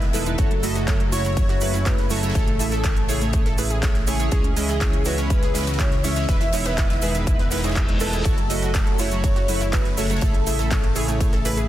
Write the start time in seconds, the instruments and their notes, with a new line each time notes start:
Already playing: analog synth bass E1, analog synth pad D#3 G#3 B3 E5
0.02 snare, closed hi-hat
0.13 analog polysynth G#3 D#4 E4 B4, synth pluck E4, analog synth lead A4, open hi-hat, ride, shaker
0.26 analog polysynth G#3 D#4 E4 B4, synth pluck E4, closed hi-hat, shaker
0.38 analog synth bass F#1, analog synth pad C#3 F#3 A3, analog polysynth A3 E4 F#4 C#5, synth pluck F#4, kick, closed hi-hat, ride, shaker
0.51 synth pluck F#3, closed hi-hat, ride
0.63 synth pluck F#3, analog polysynth A3 E4 F#4 D#5, snare, open hi-hat, ride, shaker
0.75 synth pluck F#4, snare, closed hi-hat, shaker
0.87 synth pluck F#3, analog polysynth A3 E4 F#4 C#5, kick, snare, clap, closed hi-hat, ride, shaker
1.00 synth pluck F#3, closed hi-hat
1.12 analog polysynth A3 E4 F#4 C#5, synth pluck E4, analog synth lead C#5, open hi-hat, ride, shaker
1.24 synth pluck F#3, analog polysynth A3 E4 F#4 C#5, snare, closed hi-hat, shaker
1.37 synth pluck F#3, analog polysynth A3 E4 F#4 C#5, kick, closed hi-hat, ride, shaker
1.49 synth pluck F#4, snare, closed hi-hat
1.61 synth pluck F#3, analog polysynth A3 E4 F#4 B4, open hi-hat, ride, shaker
1.73 synth pluck E4, snare, closed hi-hat, shaker
1.85 synth pluck F#3, analog polysynth A3 E4 F#4 C#5, analog synth lead B4, kick, snare, clap, closed hi-hat, ride, shaker
1.98 snare, closed hi-hat
2.10 synth pluck F#3, analog polysynth A3 E4 F#4 C#5, analog synth lead A4, snare, open hi-hat, ride, shaker
2.16 snare, ride
2.23 synth pluck F#3, analog polysynth A3 E4 F#4 C#5, snare, closed hi-hat, ride, shaker
2.29 snare, ride
2.35 analog synth bass A1, analog polysynth A3 E4 G#4 C#5, synth pluck A4, kick, closed hi-hat, ride, shaker
2.48 synth pluck A3, closed hi-hat
2.59 synth pluck A3, analog polysynth A3 E4 G#4 E5, open hi-hat, ride, shaker
2.71 synth pluck A4, snare, closed hi-hat, shaker
2.84 analog polysynth A3 E4 G#4 C#5, synth pluck A3, kick, snare, clap, closed hi-hat, ride, shaker
2.96 synth pluck A3, closed hi-hat, ride
3.08 analog polysynth A3 E4 G#4 C#5, synth pluck G#4, open hi-hat, ride, shaker
3.21 synth pluck A3, analog polysynth A3 E4 G#4 C#5, snare, closed hi-hat, shaker
3.33 synth pluck A3, analog polysynth A3 E4 G#4 C#5, kick, closed hi-hat, ride, shaker
3.46 synth pluck A4, snare, closed hi-hat
3.58 synth pluck A3, analog polysynth A3 E4 G#4 B4, open hi-hat, ride, shaker
3.70 synth pluck G#4, closed hi-hat, shaker
3.83 synth pluck A3, analog polysynth A3 E4 G#4 C#5, kick, snare, clap, closed hi-hat, ride, shaker
3.95 snare, closed hi-hat
4.07 synth pluck A3, analog polysynth A3 E4 G#4 C#5, analog synth lead G#4, open hi-hat, ride, shaker
4.20 synth pluck A3, analog polysynth A3 E4 G#4 C#5, closed hi-hat, shaker
4.31 analog synth bass C#2, analog synth pad C#3 E3 E5, analog polysynth G#3 C#4 E4 C#5, synth pluck G#4, kick, closed hi-hat, ride, shaker
4.44 synth pluck C#4, closed hi-hat, ride
4.56 analog polysynth G#3 C#4 E4 D#5, synth pluck C#4, snare, open hi-hat, ride, shaker
4.69 synth pluck G#4, snare, closed hi-hat, shaker
4.81 analog polysynth G#3 C#4 E4 C#5, synth pluck C#4, kick, snare, clap, closed hi-hat, ride, shaker
4.93 synth pluck C#4, closed hi-hat
5.05 analog polysynth G#3 C#4 E4 C#5, synth pluck F#4, analog synth lead B4, open hi-hat, ride, shaker
5.18 analog polysynth G#3 C#4 E4 C#5, synth pluck C#4, snare, closed hi-hat, shaker
5.30 analog polysynth G#3 C#4 E4 C#5, synth pluck C#4, kick, closed hi-hat, ride, shaker
5.43 synth pluck G#4, snare, closed hi-hat
5.54 analog polysynth G#3 C#4 E4 B4, synth pluck C#4, snare, open hi-hat, ride, shaker
5.61 snare, ride
5.67 synth pluck F#4, snare, closed hi-hat, ride, shaker
5.73 snare, ride
5.79 analog polysynth G#3 C#4 E4 C#5, synth pluck C#4, analog synth lead C#5, kick, snare, clap, closed hi-hat, ride, shaker
5.92 snare, closed hi-hat
6.04 analog polysynth G#3 C#4 E4 C#5, synth pluck C#4, analog synth lead E5, snare, open hi-hat, ride, shaker
6.16 analog polysynth G#3 C#4 E4 C#5, synth pluck C#4, snare, closed hi-hat, ride, shaker
6.29 analog synth bass E1, analog synth pad D#3 B3, analog polysynth G#3 D#4 E4 B4, synth pluck B4, kick, snare, closed hi-hat, ride, shaker
6.41 synth pluck E4, snare, closed hi-hat, ride
6.52 analog polysynth G#3 D#4 E4 C#5, synth pluck E4, snare, open hi-hat, ride, shaker
6.65 synth pluck B4, snare, closed hi-hat, ride, shaker
6.78 analog polysynth G#3 D#4 E4 B4, synth pluck E4, kick, snare, clap, closed hi-hat, ride, shaker
6.90 synth pluck E4, snare, closed hi-hat, ride
7.02 analog polysynth G#3 D#4 E4 B4, synth pluck G#4, open hi-hat, ride, shaker
7.15 analog polysynth G#3 D#4 E4 B4, synth pluck E4, snare, closed hi-hat, shaker
7.27 analog polysynth G#3 D#4 E4 B4, synth pluck E4, kick, closed hi-hat, ride, reverse cymbal, shaker
7.39 synth pluck B4, snare, closed hi-hat
7.51 analog polysynth G#3 D#4 E4 B4, synth pluck E4, snare, open hi-hat, ride, shaker
7.57 snare, ride
7.64 analog polysynth G#3 D#4 E4 C#5, synth pluck G#4, snare, closed hi-hat, ride, shaker
7.69 snare, ride
7.76 synth pluck E4, kick, clap, closed hi-hat, shaker
7.89 analog polysynth G#3 D#4 E4 C#5, closed hi-hat
8.00 analog polysynth G#3 D#4 E4 B4, synth pluck E4, analog synth lead A4, open hi-hat, ride, shaker
8.13 analog polysynth G#3 D#4 E4 G#4, synth pluck E4, closed hi-hat, shaker
8.25 analog synth bass F#1, analog synth pad C#3 F#3 A3 E5, analog polysynth A3 E4 F#4 C#5, synth pluck F#4, kick, closed hi-hat, ride, shaker
8.38 synth pluck F#3, closed hi-hat, ride
8.50 synth pluck F#3, analog polysynth A3 E4 F#4 D#5, snare, open hi-hat, ride, shaker
8.62 synth pluck F#4, snare, closed hi-hat, shaker
8.74 synth pluck F#3, analog polysynth A3 E4 F#4 C#5, kick, snare, clap, closed hi-hat, ride, shaker
8.87 synth pluck F#3, closed hi-hat
8.99 analog polysynth A3 E4 F#4 C#5, synth pluck E4, analog synth lead C#5, open hi-hat, ride, shaker
9.11 synth pluck F#3, analog polysynth A3 E4 F#4 C#5, snare, closed hi-hat, shaker
9.24 synth pluck F#3, analog polysynth A3 E4 F#4 C#5, kick, closed hi-hat, ride, shaker
9.36 synth pluck F#4, snare, closed hi-hat
9.48 synth pluck F#3, analog polysynth A3 E4 F#4 B4, open hi-hat, ride, shaker
9.61 synth pluck E4, snare, closed hi-hat, shaker
9.73 synth pluck F#3, analog polysynth A3 E4 F#4 C#5, analog synth lead B4, kick, snare, clap, closed hi-hat, ride, shaker
9.85 snare, closed hi-hat
9.97 synth pluck F#3, analog polysynth A3 E4 F#4 C#5, analog synth lead A4, snare, open hi-hat, ride, shaker
10.04 snare, ride
10.10 synth pluck F#3, analog polysynth A3 E4 F#4 C#5, snare, closed hi-hat, ride, shaker
10.16 snare, ride
10.21 analog synth bass A1, analog polysynth A3 E4 G#4 C#5, synth pluck A4, kick, closed hi-hat, ride, shaker
10.34 synth pluck A3, closed hi-hat
10.47 synth pluck A3, analog polysynth A3 E4 G#4 E5, open hi-hat, ride, shaker
10.59 synth pluck A4, snare, closed hi-hat, shaker
10.71 synth pluck A3, analog polysynth A3 E4 G#4 C#5, kick, snare, clap, closed hi-hat, ride, shaker
10.83 synth pluck A3, closed hi-hat, ride
10.95 analog polysynth A3 E4 G#4 C#5, synth pluck G#4, open hi-hat, ride, shaker
11.08 synth pluck A3, analog polysynth A3 E4 G#4 C#5, snare, closed hi-hat, shaker
11.20 synth pluck A3, analog polysynth A3 E4 G#4 C#5, kick, closed hi-hat, ride, shaker
11.33 synth pluck A4, snare, closed hi-hat
11.45 synth pluck A3, analog polysynth A3 E4 G#4 B4, open hi-hat, ride, shaker
11.57 synth pluck G#4, closed hi-hat, shaker